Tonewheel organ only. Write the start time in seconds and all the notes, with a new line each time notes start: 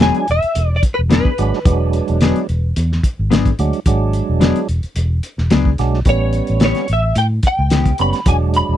Already playing: F#3 G#3 D4
1.39 F#3 G#3 D4
1.65 F#3 G#3 D4
3.60 F#3 G#3 D4
3.87 F#3 G#3 D4
5.79 F#3 G#3 D4
6.06 G3 B3 C#4
7.99 G3 B3 C#4
8.26 F#3 G#3 D4